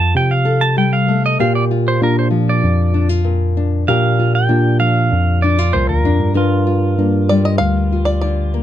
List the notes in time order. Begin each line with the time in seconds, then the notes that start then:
Already playing: F2 F3 C4 F4 A4 A5
0.15 C3 G5
0.31 F5
0.45 A4
0.61 A5
0.77 G3 G5
0.93 F5
1.08 A3
1.26 D#5
1.39 A#2 G4 F5
1.55 D5
1.71 F4
1.88 C5
2.02 A#2 D4 A#4
2.19 C5
2.31 F3
2.49 D5
2.64 F2
2.94 D4
3.09 F4
3.24 A#2
3.57 D4
3.88 A#2 G4 F5
4.19 F4
4.35 G5
4.49 A#2 D4
4.79 F3 F5
5.12 F2
5.42 D4 D5
5.58 F4
5.73 C2 A#2 C5
5.89 D2 A#4
6.04 F2 D4
6.20 G2
6.34 G2 F4 A#4
6.67 F4
6.98 G2 A#3
7.29 G3 D5
7.45 D#5
7.58 D2 F5
7.92 F4
8.05 D5
8.21 D3 D5
8.54 A#3